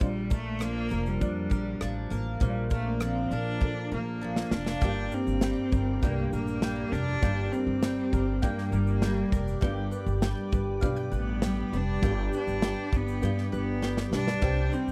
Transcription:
0.00 upright bass A#1, steel-string acoustic guitar A#2, cello G3, felt piano D4 F4 D5, kick, shaker
0.30 cello A3, steel-string acoustic guitar D4, mandolin A#4, kick, shaker
0.59 steel-string acoustic guitar F3, cello A#3, mandolin D4, cross-stick, shaker
0.89 upright bass F1, steel-string acoustic guitar A#4, mandolin A#4, shaker
1.06 cello G3, shaker
1.20 upright bass F2, felt piano A#3 F4 D5, mandolin D4, kick, shaker
1.50 upright bass A#1, steel-string acoustic guitar D4, mandolin A#4, kick, shaker
1.81 upright bass A1, steel-string acoustic guitar F3, mandolin D4, cross-stick, shaker
2.10 upright bass A1, steel-string acoustic guitar A#3, mandolin A#4, shaker
2.40 upright bass A#1, steel-string acoustic guitar A#2, cello G3, felt piano A#3 F4 C5, mandolin A#3, kick, shaker
2.50 felt piano D5
2.70 cello A3, steel-string acoustic guitar D4, mandolin A#4, kick, shaker
2.87 cello A#3
3.00 steel-string acoustic guitar F3, cello C4, mandolin D4, cross-stick, shaker
3.31 upright bass A#1, cello D4, steel-string acoustic guitar A#4, mandolin A#4, shaker
3.61 steel-string acoustic guitar A#2, upright bass A#2, felt piano A#3 F4 A4, mandolin D4, kick
3.92 upright bass A#1, cello A#3, steel-string acoustic guitar D4, mandolin A#4
4.21 steel-string acoustic guitar F3, mandolin D4
4.36 snare
4.51 upright bass F1, steel-string acoustic guitar A#3, cello D4, mandolin A#4, snare
4.66 snare
4.81 upright bass G1, steel-string acoustic guitar G2 G4, mandolin G3 G5, felt piano A#3 D4 G4 D5, ambient pad A#4 D5 G5 D6, kick, shaker
5.12 cello C4, mandolin A#4, shaker
5.27 upright bass G1, shaker
5.41 steel-string acoustic guitar G3, mandolin G5, snare, shaker
5.72 upright bass G1, mandolin A#4, kick, shaker
6.02 upright bass C2, steel-string acoustic guitar G2, felt piano A3 D4 G4 D5, cello A#3, mandolin G5, kick, shaker
6.08 felt piano A#3
6.33 upright bass A#1, cello A#3, mandolin A#4, shaker
6.47 shaker
6.62 steel-string acoustic guitar G3, mandolin G5, snare, shaker
6.92 upright bass F1, cello D4, steel-string acoustic guitar D4, mandolin A#4, shaker
7.21 upright bass G1, steel-string acoustic guitar G2 G4, mandolin G3 G5, felt piano A#3 D4 G4 D5, kick, shaker
7.52 cello C4, mandolin A#4, shaker
7.67 upright bass G1
7.83 steel-string acoustic guitar G3, mandolin G5, snare, shaker
8.13 upright bass G1, mandolin A#4, kick, shaker
8.42 steel-string acoustic guitar G2, upright bass G2, felt piano A#3 D4 G4 D5, cello A#3, mandolin G5, kick, shaker
8.58 snare
8.72 upright bass G1, cello G3, mandolin A#4, shaker
8.87 cello A#3, shaker
9.02 steel-string acoustic guitar G3, mandolin G5, snare, shaker
9.32 upright bass F1, steel-string acoustic guitar D4, mandolin A#4, kick, shaker
9.48 shaker
9.60 upright bass G1, steel-string acoustic guitar G2 G4, mandolin G3 G5, felt piano B3 D4 G4 D5, ambient pad B4, kick, shaker
9.91 mandolin B4, shaker
10.06 upright bass G1, shaker
10.22 steel-string acoustic guitar G3, mandolin G5, snare, shaker
10.52 upright bass G1, mandolin B4, kick, shaker
10.81 upright bass B1, steel-string acoustic guitar G2, felt piano B3 D4 G4 D5, mandolin F5, kick, shaker
10.96 mandolin G5
11.12 upright bass A1, mandolin B4, shaker
11.17 cello B3
11.42 steel-string acoustic guitar G3, mandolin G5, snare, shaker
11.73 upright bass F1, steel-string acoustic guitar D4, cello D4, mandolin B4, shaker
12.02 upright bass G1, steel-string acoustic guitar G2 G4, mandolin G3 G5, felt piano B3 D4 G4 D5, kick, shaker
12.33 mandolin B4, shaker
12.37 cello D4
12.47 upright bass G1, shaker
12.62 steel-string acoustic guitar G3, mandolin G5, snare, shaker
12.93 upright bass G1, cello B3, mandolin B4, kick, shaker
13.08 shaker
13.21 upright bass G2, steel-string acoustic guitar G2, felt piano B3 D4 G4 D5, mandolin G5, shaker
13.38 snare
13.52 upright bass G1, cello B3, mandolin B4, shaker
13.82 steel-string acoustic guitar G3, mandolin G5, snare
13.97 snare
14.12 upright bass B1, steel-string acoustic guitar D4, cello D4, mandolin B4, snare
14.28 snare
14.42 upright bass C2, steel-string acoustic guitar C3 G4, mandolin G3 G5, felt piano C4 G4 C5, ambient pad C5 D#6, kick, crash
14.72 cello C4, mandolin C5, shaker
14.88 upright bass C2, shaker

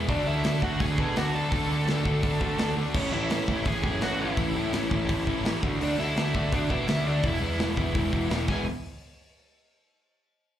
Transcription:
0.08 picked electric bass D2, overdriven electric guitar D3 A3 D4 F#4 A4, lead electric guitar D4 D5, kick, open hi-hat
0.25 picked electric bass D2, overdriven electric guitar D3 A3 D4 F#4 A4, lead electric guitar E4 E5
0.44 picked electric bass D2, overdriven electric guitar D3 A3 D4 F#4 A4, snare, open hi-hat
0.62 picked electric bass D2, overdriven electric guitar D3 A3 D4 F#4 A4, lead electric guitar F#4 F#5, kick
0.80 picked electric bass D2, overdriven electric guitar D3 A3 D4 F#4 A4, lead electric guitar G#4 G#5, kick, open hi-hat
0.98 picked electric bass B2, overdriven electric guitar D3 A3 D4 F#4 A4, kick
1.16 picked electric bass D2, overdriven electric guitar D3 A3 D4 F#4 A4, lead electric guitar F#4 F#5, snare, open hi-hat
1.33 overdriven electric guitar D3 A3 D4 F#4 A4, lead electric guitar A4 A5
1.51 picked electric bass D2, overdriven electric guitar D3 A3 D4 F#4 A4, kick, open hi-hat
1.69 overdriven electric guitar D3 A3 D4 F#4 A4, picked electric bass D3
1.87 picked electric bass D2, overdriven electric guitar D3 A3 D4 F#4 A4, snare, open hi-hat
2.05 picked electric bass D2, overdriven electric guitar D3 A3 D4 F#4 A4, kick
2.23 picked electric bass D2, overdriven electric guitar D3 A3 D4 F#4 A4, kick, open hi-hat
2.41 picked electric bass D2, overdriven electric guitar D3 A3 D4 F#4 A4, kick
2.58 picked electric bass D2, overdriven electric guitar D3 A3 D4 F#4 A4, snare, open hi-hat
2.76 picked electric bass D2, overdriven electric guitar D3 A3 D4 F#4 A4
2.94 picked electric bass A1, overdriven electric guitar A2 E3 A3 C#4 E4, lead electric guitar C#4 C#5, kick, crash
3.12 picked electric bass A1, overdriven electric guitar A2 E3 A3 C#4 E4, lead electric guitar E4 E5
3.30 picked electric bass A1, overdriven electric guitar A2 E3 A3 C#4 E4, snare, open hi-hat
3.48 picked electric bass A1, overdriven electric guitar A2 E3 A3 C#4 E4, kick
3.65 picked electric bass A1, overdriven electric guitar A2 E3 A3 C#4 E4, lead electric guitar G#4 G#5, kick, open hi-hat
3.83 picked electric bass F#2, overdriven electric guitar A2 E3 A3 C#4 E4, kick
4.01 picked electric bass A1, overdriven electric guitar A2 E3 A3 C#4 E4, lead electric guitar F#4 F#5, snare, open hi-hat
4.19 overdriven electric guitar A2 E3 A3 C#4 E4, lead electric guitar E4 E5
4.37 picked electric bass A1, overdriven electric guitar A2 E3 A3 C#4 E4, kick, open hi-hat
4.56 picked electric bass A2, overdriven electric guitar A2 E3 A3 C#4 E4
4.73 picked electric bass A1, overdriven electric guitar A2 E3 A3 C#4 E4, snare, open hi-hat
4.91 picked electric bass A1, overdriven electric guitar A2 E3 A3 C#4 E4, kick
5.09 picked electric bass A1, overdriven electric guitar A2 E3 A3 C#4 E4, kick, open hi-hat
5.26 picked electric bass A1, overdriven electric guitar A2 E3 A3 C#4 E4, kick
5.44 picked electric bass A1, overdriven electric guitar A2 E3 A3 C#4 E4, snare, open hi-hat
5.63 picked electric bass D2, overdriven electric guitar D3 A3 D4 F#4, kick
5.80 picked electric bass D2, overdriven electric guitar D3 A3 D4 F#4, lead electric guitar D4 D5, open hi-hat
5.98 picked electric bass D2, overdriven electric guitar D3 A3 D4 F#4, lead electric guitar E4 E5
6.17 picked electric bass D2, overdriven electric guitar D3 A3 D4 F#4, snare, open hi-hat
6.35 picked electric bass D2, overdriven electric guitar D3 A3 D4 F#4, kick
6.52 picked electric bass D2, overdriven electric guitar D3 A3 D4 F#4, lead electric guitar D4 D5, kick, open hi-hat
6.70 picked electric bass B2, overdriven electric guitar D3 A3 D4 F#4, lead electric guitar E4 E5, kick
6.87 picked electric bass D2, overdriven electric guitar D3 A3 D4 F#4, lead electric guitar E4 E5, snare, open hi-hat
7.06 overdriven electric guitar D3 A3 D4 F#4, lead electric guitar D4 D5
7.23 picked electric bass E1, overdriven electric guitar E3 G#3 B3 E4, lead electric guitar E4 E5, kick, open hi-hat
7.41 picked electric bass E2, overdriven electric guitar E3 G#3 B3 E4
7.59 picked electric bass E1, overdriven electric guitar E3 G#3 B3 E4, snare, open hi-hat
7.77 picked electric bass E1, overdriven electric guitar E3 G#3 B3 E4, kick
7.95 picked electric bass E1, overdriven electric guitar E3 G#3 B3 E4, kick, open hi-hat
8.13 picked electric bass E1, overdriven electric guitar E3 G#3 B3 E4, kick
8.30 picked electric bass E1, overdriven electric guitar E3 G#3 B3 E4, snare, open hi-hat
8.48 picked electric bass E1, overdriven electric guitar E3 G#3 B3 E4, lead electric guitar G#5, kick, crash

